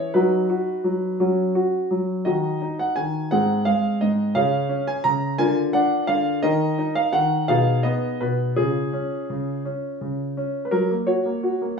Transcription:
0.00 0.13 E3 soft
0.00 0.13 C#5 medium
0.14 0.48 F#3 soft
0.14 1.16 D#4 soft
0.14 0.48 F#4 soft
0.14 1.20 B4 medium
0.50 0.84 F#4 soft
0.84 1.18 F#3 soft
1.20 1.54 F#3 soft
1.20 2.23 C#4 soft
1.20 1.54 F#4 soft
1.55 1.90 F#4 soft
1.91 2.25 F#3 soft
2.25 2.60 D#3 soft
2.25 2.60 D#4 soft
2.25 3.27 F#4 soft
2.25 2.78 D#5 medium
2.62 2.96 D#4 soft
2.79 2.97 F#5 medium
2.96 3.31 D#3 soft
2.96 3.31 G#5 medium
3.31 3.66 G#2 soft
3.31 4.32 C4 soft
3.31 4.32 G#4 soft
3.31 3.66 F#5 medium
3.65 4.00 G#3 soft
3.65 4.01 F5 medium
4.01 4.35 G#2 soft
4.01 4.32 D#5 medium
4.35 4.69 C#3 soft
4.35 4.68 C#4 soft
4.35 5.36 G#4 soft
4.35 4.87 F5 medium
4.69 5.03 C#4 soft
4.87 5.05 G#5 medium
5.04 5.38 C#3 soft
5.04 5.35 A#5 medium
5.38 5.73 D3 medium
5.38 6.39 F4 soft
5.38 6.39 A#4 soft
5.38 5.59 G#5 medium
5.73 6.08 D4 soft
5.73 6.08 F#5 medium
6.07 6.42 D3 soft
6.07 6.39 F5 medium
6.43 6.77 D#3 medium
6.43 6.77 D#4 soft
6.43 7.45 A#4 soft
6.43 6.91 D#5 medium
6.78 7.12 D#4 soft
6.95 7.13 F5 medium
7.13 7.48 D#3 soft
7.13 7.48 F#5 medium
7.48 7.84 B2 medium
7.48 8.53 D#4 soft
7.48 8.53 G#4 soft
7.48 7.84 F5 medium
7.83 8.19 B3 soft
7.83 8.20 D#5 medium
8.21 8.56 B2 soft
8.21 8.53 B4 medium
8.56 8.93 C#3 soft
8.56 10.70 F4 soft
8.56 9.65 G#4 medium
8.93 9.28 C#4 soft
9.30 9.65 C#3 soft
9.65 10.00 C#4 soft
10.01 10.37 C#3 soft
10.37 10.72 C#4 soft
10.65 10.73 B4 soft
10.71 10.90 F#3 soft
10.71 10.93 A#4 medium
10.91 11.09 A#3 soft
11.07 11.27 F#4 soft
11.07 11.74 C#5 soft
11.26 11.44 A#3 soft
11.43 11.62 F#4 soft
11.62 11.79 A#3 soft

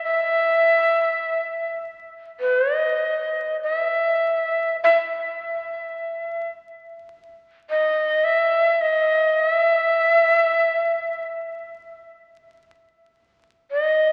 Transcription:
0.03 1.76 E5 medium
2.40 2.78 B4 medium
2.78 3.57 D#5 medium
3.63 3.75 D#5 medium
3.75 4.76 E5 medium
4.84 6.50 E5 medium
7.70 8.26 D#5 medium
8.24 8.83 E5 medium
8.81 9.42 D#5 medium
9.40 11.24 E5 loud
13.71 14.12 D#5 medium

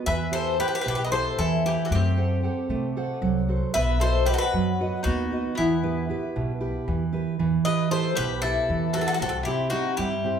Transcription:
0.06 0.62 E2 loud
0.06 0.57 E3 medium
0.06 0.31 B4 medium
0.06 0.31 E5 medium
0.31 0.58 E4 soft
0.31 0.58 G4 soft
0.31 0.58 A4 medium
0.31 0.58 B4 medium
0.31 0.59 C5 medium
0.59 1.01 E4 soft
0.59 1.01 G4 soft
0.59 0.66 G4 medium
0.59 1.01 B4 medium
0.59 0.67 B4 medium
0.68 0.74 G4 medium
0.68 0.74 B4 medium
0.75 0.81 G4 medium
0.75 0.80 B4 medium
0.81 0.88 G4 medium
0.81 0.87 B4 medium
0.86 1.23 B1 medium
0.86 1.37 B2 medium
0.86 0.94 B4 medium
0.90 0.95 G4 medium
0.95 1.03 G4 medium
0.95 1.02 B4 medium
1.05 1.12 B4 medium
1.05 1.11 D#5 medium
1.12 1.54 E4 medium
1.12 1.54 G4 soft
1.12 1.37 A4 medium
1.12 1.54 B4 medium
1.12 1.36 C5 medium
1.38 1.75 E2 loud
1.38 1.89 E3 medium
1.38 1.64 E4 medium
1.38 1.63 A4 medium
1.65 1.86 E4 soft
1.65 1.85 E4 medium
1.65 1.86 G4 soft
1.65 1.83 G4 medium
1.65 1.87 B4 soft
1.85 1.91 F#4 medium
1.85 1.91 A4 medium
1.91 2.46 F#2 loud
1.91 2.42 A3 medium
1.91 3.45 G4 medium
1.95 3.46 C4 medium
2.17 2.43 A4 soft
2.17 2.44 C5 medium
2.17 2.42 F#5 soft
2.43 2.86 A4 soft
2.43 2.86 C5 soft
2.43 2.85 F#5 soft
2.69 3.06 C3 medium
2.69 3.21 A3 medium
2.97 3.38 A4 soft
2.97 3.39 C5 medium
2.97 3.38 F#5 medium
3.22 3.59 C2 loud
3.22 3.73 F#3 medium
3.49 3.69 F#4 soft
3.49 3.70 A4 soft
3.49 3.70 C5 medium
3.74 4.30 B1 loud
3.74 4.02 B3 medium
3.74 3.99 B4 medium
3.74 3.98 E5 loud
4.00 4.27 F#4 soft
4.00 4.25 A4 medium
4.00 4.27 B4 soft
4.00 4.25 C5 medium
4.00 4.28 D#5 medium
4.26 4.69 F#4 soft
4.26 4.32 G4 medium
4.26 4.33 B4 medium
4.26 4.70 B4 soft
4.26 4.70 D#5 medium
4.33 4.37 F#4 medium
4.33 4.40 A4 medium
4.38 5.01 F#4 medium
4.38 5.00 B4 loud
4.53 4.90 F#2 medium
4.53 5.04 F#3 medium
4.81 5.22 F#4 medium
4.81 5.22 B4 soft
4.81 5.22 D#5 medium
5.03 5.42 D#2 loud
5.03 5.53 D#4 medium
5.03 5.53 F#4 medium
5.07 5.57 B3 medium
5.32 5.53 F#4 soft
5.32 5.53 B4 soft
5.32 5.53 D#5 soft
5.55 6.13 E2 loud
5.55 6.08 E3 medium
5.55 6.83 B3 medium
5.55 6.84 E4 medium
5.83 6.08 E4 soft
5.83 6.09 G4 soft
5.83 6.09 B4 medium
6.09 6.51 E4 soft
6.09 6.51 G4 soft
6.09 6.52 B4 medium
6.36 6.72 B1 medium
6.36 6.86 B2 medium
6.61 7.03 E4 soft
6.61 7.03 G4 soft
6.61 7.03 B4 medium
6.88 7.24 E2 loud
6.88 7.38 E3 medium
7.13 7.34 E4 soft
7.13 7.34 G4 soft
7.13 7.34 B4 soft
7.39 7.58 E2 loud
7.39 7.90 E3 medium
7.65 7.90 E4 soft
7.65 7.90 G4 soft
7.65 7.90 B4 medium
7.65 7.91 B4 medium
7.65 7.89 D#5 loud
7.91 8.33 E4 medium
7.91 8.33 G4 soft
7.91 8.15 A4 medium
7.91 8.33 B4 medium
7.91 8.16 C5 medium
8.15 8.54 B1 medium
8.15 8.68 B2 medium
8.15 8.40 G4 medium
8.15 8.41 B4 loud
8.42 8.91 E4 medium
8.42 8.85 E4 medium
8.42 8.85 G4 medium
8.42 8.91 A4 medium
8.42 8.85 B4 medium
8.69 9.05 E2 medium
8.69 9.20 E3 medium
8.93 9.16 E4 soft
8.93 8.98 F#4 medium
8.93 9.16 G4 soft
8.93 9.00 A4 medium
8.93 9.17 B4 medium
8.99 9.05 F#4 medium
8.99 9.06 A4 medium
9.07 9.12 F#4 medium
9.07 9.13 A4 medium
9.13 9.18 F#4 medium
9.13 9.21 A4 medium
9.20 9.39 C2 medium
9.20 9.71 C3 medium
9.20 9.25 F#4 medium
9.20 9.28 A4 medium
9.26 9.35 F#4 medium
9.26 9.37 A4 medium
9.43 9.71 C4 soft
9.43 9.69 E4 medium
9.43 9.71 E4 soft
9.43 9.70 G4 medium
9.43 9.72 G4 medium
9.70 10.14 C4 soft
9.70 9.95 D#4 medium
9.70 10.13 E4 soft
9.70 9.97 F#4 medium
9.70 10.14 G4 medium
9.97 10.35 G2 medium
9.97 10.40 G3 medium
9.97 10.40 E4 medium
9.97 10.40 G4 medium
10.24 10.40 C4 medium
10.24 10.40 E4 soft
10.24 10.40 G4 medium

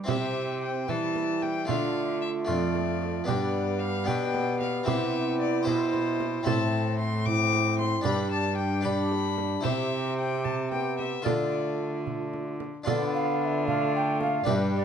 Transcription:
0.04 0.84 C3 soft
0.04 1.62 C4 soft
0.04 1.63 E4 soft
0.04 1.64 G4 soft
0.08 0.90 C3 medium
0.08 0.90 C4 soft
0.08 0.90 G4 medium
0.08 0.58 E5 medium
0.08 frame drum medium
0.61 0.90 G5 medium
0.88 1.64 E3 soft
0.88 1.68 E3 medium
0.88 1.68 G3 medium
0.88 1.68 E4 medium
0.88 1.44 A5 medium
0.88 frame drum soft
1.16 frame drum soft
1.42 1.69 G5 medium
1.42 frame drum soft
1.65 2.45 D3 soft
1.65 2.50 D3 medium
1.65 2.43 A3 soft
1.65 2.45 F4 soft
1.65 3.25 F4 medium
1.65 frame drum medium
1.69 3.25 A3 medium
1.69 2.21 F5 medium
2.21 2.29 E5 medium
2.45 3.27 F2 medium
2.45 3.24 F2 soft
2.45 3.24 A3 soft
2.45 3.25 F4 soft
2.45 3.26 D5 medium
2.45 frame drum soft
2.75 frame drum medium
3.02 frame drum soft
3.24 4.04 G2 soft
3.24 4.10 G2 medium
3.24 4.03 B3 soft
3.24 4.04 D4 soft
3.24 4.04 G4 soft
3.24 4.89 G4 medium
3.24 3.81 D5 medium
3.29 5.69 B3 medium
3.29 frame drum medium
3.80 4.08 F5 medium
4.04 4.83 B3 soft
4.04 4.84 D4 soft
4.04 4.85 G4 soft
4.04 4.59 G5 medium
4.04 frame drum soft
4.08 4.84 B2 medium
4.08 4.87 B2 medium
4.34 frame drum soft
4.60 4.86 F5 medium
4.60 frame drum soft
4.83 5.63 C4 soft
4.83 5.63 E4 medium
4.83 5.64 G4 soft
4.87 5.63 C3 medium
4.87 5.69 C3 medium
4.87 6.46 E4 medium
4.87 5.39 E5 medium
4.87 frame drum medium
5.40 5.66 D5 medium
5.63 6.42 B2 medium
5.63 6.43 E4 soft
5.63 6.43 G4 soft
5.63 6.42 C5 soft
5.63 6.44 C5 medium
5.67 6.47 B2 medium
5.67 6.47 E4 medium
5.67 frame drum soft
5.94 frame drum soft
6.20 frame drum soft
6.43 8.01 A2 medium
6.43 7.99 C4 soft
6.43 8.00 E4 soft
6.43 6.97 E4 medium
6.43 8.01 A4 soft
6.43 6.98 A5 medium
6.43 frame drum medium
6.47 8.02 A2 medium
6.47 6.97 C4 medium
6.99 7.27 C6 medium
7.26 8.07 C4 medium
7.26 8.06 E4 medium
7.26 7.78 D6 medium
7.26 frame drum soft
7.52 frame drum medium
7.79 8.04 C6 medium
7.79 frame drum soft
8.01 9.60 G2 medium
8.01 9.61 G2 medium
8.01 8.80 D4 soft
8.01 8.81 G4 soft
8.01 8.85 G4 medium
8.01 8.81 D5 medium
8.01 frame drum medium
8.05 8.85 D4 medium
8.05 8.31 B5 medium
8.31 8.56 A5 medium
8.57 8.86 G5 medium
8.81 9.60 D4 soft
8.81 9.61 G4 soft
8.81 9.63 G4 medium
8.81 9.62 D5 soft
8.81 9.65 B5 medium
8.81 frame drum soft
8.86 9.64 D4 medium
9.11 frame drum soft
9.38 frame drum soft
9.61 11.21 C3 soft
9.61 11.19 E4 soft
9.61 11.20 G4 soft
9.61 11.21 C5 soft
9.61 10.17 E5 medium
9.61 frame drum medium
9.65 11.22 C3 medium
9.65 10.74 C4 medium
9.65 11.22 G4 medium
10.18 10.46 G5 medium
10.44 10.70 A5 medium
10.44 frame drum soft
10.71 11.25 B3 medium
10.71 10.98 G5 medium
10.71 frame drum soft
10.99 11.26 E5 medium
10.99 frame drum soft
11.22 12.64 D3 medium
11.22 12.63 D3 soft
11.22 12.58 A3 soft
11.22 12.81 F4 soft
11.22 12.58 F4 medium
11.22 12.82 A4 soft
11.22 12.06 D5 medium
11.22 frame drum medium
12.07 frame drum soft
12.34 frame drum soft
12.60 frame drum soft
12.84 14.42 D3 medium
12.84 14.43 D3 medium
12.84 13.69 B3 medium
12.84 14.41 D4 medium
12.84 14.41 F4 medium
12.84 14.48 F4 medium
12.84 14.42 A4 medium
12.84 13.11 D5 loud
12.84 frame drum medium
13.14 13.41 F5 loud
13.41 13.66 E5 loud
13.41 13.46 F5 medium
13.67 14.46 A3 medium
13.67 13.93 F5 loud
13.67 frame drum medium
13.95 14.20 G5 loud
14.21 14.47 F5 loud
14.21 frame drum medium
14.44 14.85 G2 medium
14.44 14.85 G3 medium
14.44 14.85 D4 medium
14.44 14.85 G4 medium
14.44 14.85 B4 medium
14.44 frame drum medium
14.48 14.54 E5 loud
14.76 14.85 D5 loud

